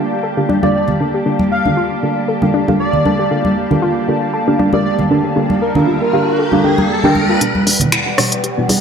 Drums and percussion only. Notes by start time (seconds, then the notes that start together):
0.50 high conga
0.63 high conga
0.88 high conga, low conga
1.39 high conga
1.65 low conga
2.42 high conga
2.68 high conga
2.93 low conga
3.06 high conga
3.45 high conga
3.71 low conga
4.59 high conga
4.73 high conga
4.99 high conga, low conga
5.50 high conga
5.75 low conga
6.52 high conga
6.78 high conga
7.04 low conga
7.15 high conga
7.41 closed hi-hat
7.55 high conga
7.67 open hi-hat
7.80 closed hi-hat, low conga
7.92 finger snap, closed hi-hat
8.18 cross-stick, open hi-hat
8.32 closed hi-hat
8.44 closed hi-hat
8.69 open hi-hat, high conga